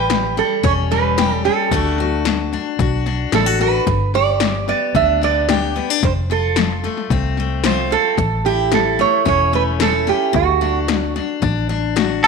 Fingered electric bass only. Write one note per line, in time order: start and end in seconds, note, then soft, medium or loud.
0.00 0.40 A1 medium
0.63 1.48 E1 medium
1.71 2.56 D2 medium
2.79 3.25 B1 medium
3.32 3.79 A1 medium
3.86 4.71 G1 medium
4.94 5.79 D2 medium
6.02 6.87 F1 medium
7.10 7.95 C2 medium
8.18 9.02 A1 medium
9.26 10.11 E1 medium
10.34 11.19 D2 medium
11.42 12.27 A1 medium